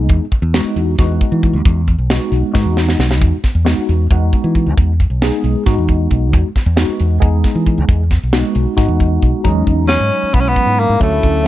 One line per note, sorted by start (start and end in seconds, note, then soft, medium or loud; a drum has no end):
0.00 0.24 G#3 medium
0.00 0.24 B3 medium
0.00 0.24 D#4 medium
0.00 0.24 G#4 medium
0.09 0.19 E2 loud
0.09 kick loud
0.09 closed hi-hat medium
0.32 muted fingered electric bass stroke soft
0.32 kick medium
0.32 closed hi-hat medium
0.42 0.62 E2 medium
0.54 0.95 G#3 medium
0.54 0.94 B3 medium
0.54 0.95 D#4 medium
0.54 0.94 F#4 medium
0.54 snare loud
0.54 closed hi-hat medium
0.64 muted fingered electric bass stroke soft
0.76 0.95 E2 medium
0.76 closed hi-hat medium
0.98 1.18 E2 medium
0.98 1.80 G#3 medium
0.98 1.80 B3 medium
0.98 1.80 D#4 medium
0.98 1.80 F#4 medium
0.98 kick medium
0.98 snare soft
0.98 closed hi-hat medium
1.21 kick medium
1.21 closed hi-hat medium
1.32 1.55 E3 medium
1.43 kick medium
1.43 closed hi-hat medium
1.53 1.63 D#2 medium
1.65 1.94 E2 medium
1.65 kick loud
1.65 closed hi-hat medium
1.88 kick medium
1.88 closed hi-hat medium
1.98 2.18 B1 medium
2.10 2.51 G#3 medium
2.10 2.51 B3 medium
2.10 2.51 D#4 medium
2.10 2.51 F#4 medium
2.10 snare loud
2.10 closed hi-hat medium
2.32 2.42 B1 medium
2.32 closed hi-hat medium
2.43 muted fingered electric bass stroke soft
2.53 2.64 G#2 medium
2.53 3.35 G#3 medium
2.53 3.35 B3 medium
2.53 3.35 D#4 medium
2.53 3.35 F#4 medium
2.53 kick medium
2.53 snare medium
2.66 2.95 E2 medium
2.77 snare medium
2.89 snare medium
2.99 3.21 B1 medium
2.99 snare medium
3.11 snare medium
3.21 3.31 E2 medium
3.21 kick loud
3.21 closed hi-hat medium
3.44 muted fingered electric bass stroke soft
3.44 kick medium
3.44 snare soft
3.44 closed hi-hat medium
3.55 3.74 E2 medium
3.65 4.06 G#3 medium
3.65 4.06 B3 medium
3.65 4.06 D#4 medium
3.65 4.06 F#4 medium
3.65 snare loud
3.65 closed hi-hat medium
3.78 muted fingered electric bass stroke soft
3.89 4.08 E2 medium
3.89 closed hi-hat medium
4.11 4.30 E2 medium
4.11 4.92 G#3 medium
4.11 4.92 B3 medium
4.11 4.92 D#4 medium
4.11 4.92 F#4 medium
4.11 kick medium
4.11 closed hi-hat medium
4.33 kick medium
4.33 closed hi-hat medium
4.44 4.68 E3 medium
4.55 kick medium
4.55 closed hi-hat medium
4.66 4.76 D#2 medium
4.77 5.06 E2 medium
4.77 kick loud
4.77 closed hi-hat medium
5.00 kick medium
5.00 closed hi-hat medium
5.10 5.29 B1 medium
5.22 5.62 G#3 medium
5.22 5.62 B3 medium
5.22 5.62 D#4 medium
5.22 5.63 G#4 medium
5.22 snare loud
5.22 closed hi-hat medium
5.44 5.53 B1 medium
5.44 closed hi-hat medium
5.55 muted fingered electric bass stroke soft
5.66 5.76 G#2 medium
5.66 6.47 G#3 medium
5.66 6.47 B3 medium
5.66 6.47 D#4 medium
5.66 6.47 F#4 medium
5.66 kick medium
5.66 snare soft
5.66 closed hi-hat medium
5.78 6.07 E2 medium
5.88 kick medium
5.88 closed hi-hat medium
6.11 6.33 B1 medium
6.11 kick medium
6.11 closed hi-hat medium
6.33 6.43 E2 medium
6.33 kick loud
6.33 closed hi-hat medium
6.56 muted fingered electric bass stroke soft
6.56 kick medium
6.56 snare soft
6.56 closed hi-hat medium
6.66 6.86 E2 medium
6.76 7.18 G#3 medium
6.76 7.18 B3 medium
6.76 7.17 D#4 medium
6.76 7.18 F#4 medium
6.76 snare loud
6.76 closed hi-hat medium
6.89 muted fingered electric bass stroke soft
7.00 7.19 E2 medium
7.00 closed hi-hat medium
7.20 7.41 E2 medium
7.20 8.02 G#3 medium
7.20 8.02 B3 medium
7.20 8.02 D#4 medium
7.20 8.02 G#4 medium
7.20 kick loud
7.20 closed hi-hat medium
7.44 kick medium
7.44 snare soft
7.44 closed hi-hat medium
7.55 7.79 E3 medium
7.66 kick medium
7.66 closed hi-hat medium
7.78 7.87 D#2 medium
7.88 8.18 E2 medium
7.88 kick loud
7.88 closed hi-hat medium
8.11 kick medium
8.11 snare soft
8.11 closed hi-hat medium
8.23 8.42 B1 medium
8.33 8.74 G#3 medium
8.33 8.74 B3 medium
8.33 8.74 D#4 medium
8.33 8.73 F#4 medium
8.33 snare loud
8.33 closed hi-hat medium
8.55 8.65 B1 medium
8.55 closed hi-hat soft
8.67 muted fingered electric bass stroke soft
8.76 8.87 G#2 medium
8.76 9.43 G#3 medium
8.76 9.44 B3 medium
8.76 9.43 D#4 medium
8.76 9.44 F#4 medium
8.76 kick medium
8.76 snare soft
8.76 closed hi-hat medium
8.88 9.18 E2 medium
9.00 kick medium
9.00 closed hi-hat medium
9.22 9.32 B1 medium
9.22 kick medium
9.22 closed hi-hat medium
9.44 9.64 E2 medium
9.44 9.85 F#3 medium
9.44 9.85 G#3 medium
9.44 9.85 C#4 medium
9.44 9.85 D#4 medium
9.44 kick medium
9.44 closed hi-hat medium
9.67 9.96 E2 medium
9.67 kick medium
9.67 closed hi-hat soft
9.87 10.29 F#3 medium
9.87 10.29 G#3 soft
9.87 10.36 C#4 medium
9.87 10.29 C#4 soft
9.87 10.29 D#4 medium
9.87 snare medium
9.87 closed hi-hat medium
10.00 10.10 G#2 medium
10.12 closed hi-hat soft
10.23 muted fingered electric bass stroke soft
10.33 10.53 B1 medium
10.33 10.98 F#3 medium
10.33 11.00 G#3 soft
10.33 10.42 B3 medium
10.33 10.98 C#4 medium
10.33 10.98 E4 medium
10.33 kick medium
10.33 closed hi-hat medium
10.41 10.50 C#4 medium
10.49 10.81 B3 medium
10.56 kick medium
10.56 closed hi-hat medium
10.66 10.86 G#2 medium
10.79 11.01 A#3 medium
10.79 closed hi-hat medium
10.89 10.99 G#2 medium
10.99 11.20 D2 medium
10.99 11.41 F#3 medium
10.99 11.41 A3 medium
10.99 11.47 A3 medium
10.99 11.40 C#4 medium
10.99 11.40 E4 medium
10.99 kick medium
10.99 closed hi-hat medium
11.23 11.47 D2 medium
11.23 kick medium
11.23 closed hi-hat medium
11.43 11.47 F#3 medium
11.43 11.47 A3 medium
11.43 11.47 C#4 medium
11.43 11.47 F#4 medium